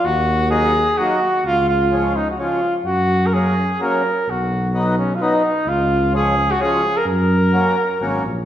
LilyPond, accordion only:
\new Staff \with { instrumentName = "Accordion" } { \time 3/4 \key fis \major \tempo 4 = 128 r4 <fis ais dis'>8 r8 <fis ais dis'>8 r8 | r4 <eis gis cis'>8 r8 <eis gis cis'>8 r8 | r4 <fis ais cis'>8 r8 <fis ais cis'>8 r8 | r4 <fis b dis'>8 r8 <fis b dis'>8 r8 |
r4 <eis gis cis'>8 r8 <eis gis cis'>8 r8 | r4 <fis ais cis'>8 r8 <fis ais cis'>8 r8 | }